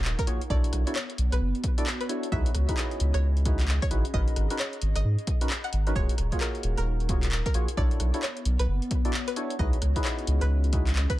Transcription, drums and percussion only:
0.05 clap
0.19 kick, closed hi-hat
0.27 closed hi-hat
0.41 closed hi-hat
0.50 kick
0.64 closed hi-hat
0.73 cross-stick, closed hi-hat
0.87 closed hi-hat
0.96 clap
1.10 closed hi-hat
1.18 closed hi-hat
1.32 cross-stick, closed hi-hat
1.55 closed hi-hat
1.64 kick, closed hi-hat
1.78 closed hi-hat
1.87 clap
2.01 closed hi-hat
2.09 closed hi-hat
2.23 closed hi-hat
2.32 kick
2.46 closed hi-hat
2.55 cross-stick, closed hi-hat
2.69 kick, closed hi-hat
2.77 clap
2.91 closed hi-hat
3.00 closed hi-hat
3.14 cross-stick, closed hi-hat
3.37 closed hi-hat
3.45 kick, closed hi-hat
3.60 clap, closed hi-hat
3.68 clap
3.82 kick, closed hi-hat
3.91 closed hi-hat
4.05 closed hi-hat
4.14 kick
4.28 closed hi-hat
4.36 cross-stick, closed hi-hat
4.50 closed hi-hat
4.59 clap
4.73 closed hi-hat
4.82 closed hi-hat
4.96 cross-stick, closed hi-hat
5.19 closed hi-hat
5.27 kick, closed hi-hat
5.41 closed hi-hat
5.50 clap
5.64 closed hi-hat
5.73 closed hi-hat
5.87 closed hi-hat
5.95 kick
6.09 closed hi-hat
6.18 cross-stick, closed hi-hat
6.32 kick, closed hi-hat
6.41 clap
6.55 closed hi-hat
6.63 closed hi-hat
6.78 cross-stick, closed hi-hat
7.00 closed hi-hat
7.09 kick, closed hi-hat
7.23 clap, closed hi-hat
7.32 clap
7.46 kick, closed hi-hat
7.54 closed hi-hat
7.68 closed hi-hat
7.77 kick
7.91 closed hi-hat
8.00 cross-stick, closed hi-hat
8.14 closed hi-hat
8.23 clap
8.37 closed hi-hat
8.45 closed hi-hat
8.59 cross-stick, closed hi-hat
8.82 closed hi-hat
8.91 kick, closed hi-hat
9.05 closed hi-hat
9.14 clap
9.28 closed hi-hat
9.36 closed hi-hat
9.50 closed hi-hat
9.59 kick
9.73 closed hi-hat
9.82 cross-stick, closed hi-hat
9.96 kick, closed hi-hat
10.05 clap
10.19 closed hi-hat
10.27 closed hi-hat
10.41 cross-stick, closed hi-hat
10.64 closed hi-hat
10.73 kick, closed hi-hat
10.87 clap, closed hi-hat
10.96 clap
11.10 kick, closed hi-hat

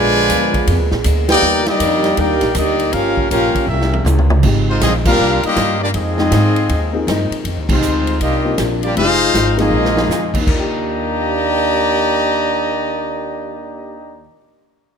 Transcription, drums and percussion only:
0.30 kick, hi-hat pedal, ride
0.54 kick, ride
0.67 kick, ride
0.91 snare
1.04 kick, hi-hat pedal, ride
1.29 snare, ride
1.66 snare, ride
1.80 kick, hi-hat pedal, ride
2.04 snare, ride
2.17 kick, ride
2.41 snare, ride
2.55 kick, hi-hat pedal, ride
2.80 ride
2.93 kick, ride
3.17 kick
3.31 kick, hi-hat pedal, ride
3.55 kick, ride
3.81 snare
3.94 high tom
4.06 hi-hat pedal, mid tom
4.19 mid tom
4.30 mid tom
4.43 kick, crash
4.81 kick, snare, hi-hat pedal, ride
5.05 kick, crash
5.43 ride
5.56 kick, snare, hi-hat pedal, ride
5.94 kick, ride
6.18 snare
6.32 kick, snare, hi-hat pedal, ride
6.56 ride
6.69 kick, ride
7.07 kick, snare, hi-hat pedal, ride
7.32 ride
7.45 kick, ride
7.69 kick, crash
7.82 hi-hat pedal
8.07 ride
8.20 kick, ride
8.58 kick, snare, hi-hat pedal, ride
8.83 ride
8.96 kick, ride
9.34 kick, snare, hi-hat pedal, ride
9.58 snare, ride
9.85 snare
9.97 snare
10.11 snare, hi-hat pedal
10.34 kick, crash
10.47 kick, china

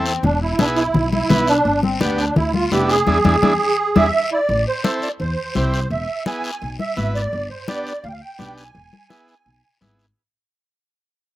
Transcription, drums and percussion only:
0.06 short guiro
0.23 high conga, low conga, long guiro
0.59 high conga, short guiro
0.76 short guiro
0.94 high conga, low conga, long guiro
1.13 high conga
1.30 high conga, low conga, short guiro
1.47 short guiro
1.65 high conga, long guiro
1.83 high conga
2.01 high conga, short guiro
2.18 short guiro
2.36 high conga, low conga, long guiro
2.54 high conga
2.72 high conga, short guiro
2.89 short guiro
3.07 high conga, long guiro
3.25 high conga, long guiro
3.43 high conga, long guiro
3.96 high conga, long guiro
4.49 high conga, long guiro
4.84 high conga, short guiro
5.02 short guiro
5.20 high conga, long guiro
5.55 high conga, short guiro
5.74 short guiro
5.91 high conga, long guiro
6.26 high conga, short guiro
6.44 short guiro
6.62 high conga, long guiro
6.79 high conga
6.97 high conga, short guiro
7.15 short guiro
7.32 high conga, long guiro
7.68 high conga, short guiro
7.87 short guiro
8.04 high conga, long guiro
8.39 high conga, short guiro
8.58 short guiro
8.75 high conga, long guiro
8.93 high conga
9.10 high conga, short guiro
9.28 short guiro
9.46 high conga, long guiro
9.81 high conga, short guiro
9.99 short guiro

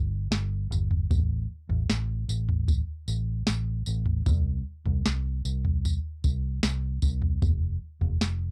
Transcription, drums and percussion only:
0.32 snare, tambourine
0.72 floor tom, tambourine
0.91 floor tom
1.11 kick, floor tom, tambourine
1.70 floor tom
1.90 snare, tambourine
2.29 tambourine
2.49 floor tom
2.68 kick, floor tom, tambourine
3.08 tambourine
3.47 snare, tambourine
3.86 tambourine
4.06 floor tom
4.26 kick, floor tom, tambourine
4.86 floor tom
5.06 snare, tambourine
5.45 tambourine
5.65 floor tom
5.85 floor tom, tambourine
6.24 kick, tambourine
6.63 snare, tambourine
7.02 kick, tambourine
7.22 floor tom
7.42 kick, floor tom, tambourine
8.01 floor tom
8.21 snare, tambourine

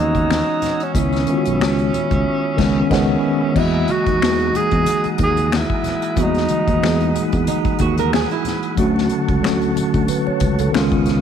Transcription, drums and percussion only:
0.15 kick, closed hi-hat, high conga
0.30 finger snap, snare, muted conga, high conga
0.47 muted conga
0.62 snare, closed hi-hat, low conga
0.80 closed hi-hat
0.95 kick, closed hi-hat
1.12 snare, closed hi-hat, muted conga
1.27 closed hi-hat, high conga
1.45 closed hi-hat
1.60 finger snap, snare, muted conga, high conga
1.78 closed hi-hat, muted conga
1.93 closed hi-hat, low conga
2.11 kick, closed hi-hat, low conga
2.58 kick, snare, crash
2.91 kick, snare, crash
3.56 kick, crash, muted conga
3.74 muted conga
3.88 closed hi-hat, high conga
4.06 kick, closed hi-hat
4.22 finger snap, snare, high conga
4.39 closed hi-hat, muted conga
4.53 closed hi-hat, low conga
4.71 kick, closed hi-hat
4.86 closed hi-hat, muted conga, high conga
5.04 closed hi-hat, muted conga
5.18 kick, closed hi-hat, high conga
5.37 closed hi-hat, high conga
5.52 finger snap, snare, muted conga, high conga
5.70 kick
5.84 snare, closed hi-hat, low conga
6.02 closed hi-hat
6.16 kick, closed hi-hat, muted conga
6.34 snare, closed hi-hat, muted conga
6.48 closed hi-hat, high conga
6.68 kick, closed hi-hat
6.83 finger snap, snare, muted conga, high conga
7.00 closed hi-hat, muted conga
7.15 closed hi-hat, low conga
7.32 kick, closed hi-hat
7.47 closed hi-hat, muted conga, high conga
7.65 kick, closed hi-hat, muted conga
7.79 kick, closed hi-hat, high conga
7.98 closed hi-hat, high conga
8.13 finger snap, snare, muted conga, high conga
8.30 closed hi-hat, muted conga
8.45 snare, closed hi-hat, low conga
8.63 closed hi-hat
8.77 kick, closed hi-hat
8.96 snare, muted conga
9.09 closed hi-hat, high conga
9.29 kick, closed hi-hat
9.44 finger snap, snare, high conga
9.62 closed hi-hat
9.76 closed hi-hat, low conga
9.94 kick, closed hi-hat
10.08 closed hi-hat, high conga
10.27 muted conga
10.40 kick, closed hi-hat, high conga
10.59 closed hi-hat, high conga
10.74 finger snap, snare, high conga
10.91 kick, closed hi-hat, muted conga
11.06 snare, closed hi-hat, low conga

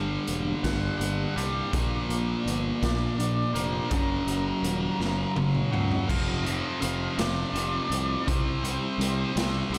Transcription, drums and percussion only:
0.27 closed hi-hat
0.64 kick, snare, closed hi-hat
1.01 closed hi-hat
1.38 closed hi-hat
1.73 kick, closed hi-hat
2.10 closed hi-hat
2.48 closed hi-hat
2.83 kick, snare, closed hi-hat
3.20 closed hi-hat
3.56 closed hi-hat
3.91 kick, closed hi-hat
4.28 closed hi-hat
4.64 closed hi-hat
5.00 snare
5.36 high tom
5.55 mid tom
5.73 mid tom
5.91 floor tom
6.09 kick, crash
6.46 closed hi-hat
6.82 closed hi-hat
7.19 snare, closed hi-hat
7.56 closed hi-hat
7.92 closed hi-hat
8.28 kick, closed hi-hat
8.65 closed hi-hat
9.01 closed hi-hat
9.37 snare, closed hi-hat
9.74 closed hi-hat

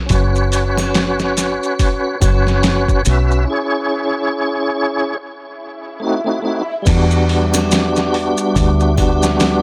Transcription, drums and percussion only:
0.09 kick, open hi-hat, maracas
0.36 maracas
0.52 open hi-hat, maracas
0.77 snare, triangle, maracas
0.94 snare, open hi-hat, maracas
1.19 snare, maracas
1.37 snare, open hi-hat, maracas
1.63 maracas
1.79 kick, open hi-hat, maracas
2.21 kick, open hi-hat, triangle, maracas
2.47 snare, maracas
2.63 snare, open hi-hat, maracas
2.88 kick, maracas
3.05 open hi-hat, maracas
3.31 maracas
6.86 kick, open hi-hat, crash, maracas
7.11 maracas
7.29 open hi-hat
7.54 snare, triangle, maracas
7.71 snare, open hi-hat, maracas
7.96 snare, maracas
8.14 open hi-hat
8.37 maracas
8.56 kick, open hi-hat, maracas
8.80 maracas
8.98 kick, open hi-hat, triangle
9.23 snare, maracas
9.40 snare, open hi-hat, maracas

